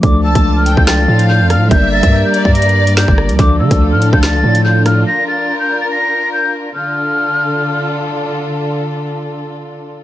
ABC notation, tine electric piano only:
X:1
M:4/4
L:1/8
Q:1/4=143
K:Dm
V:1 name="Tine electric piano"
[F,A,DAd]8 | [G,B,DBd]8 | [F,A,DAd]4- [F,A,DAd] [F,A,DAd]3 | z8 |
z8 | z8 |]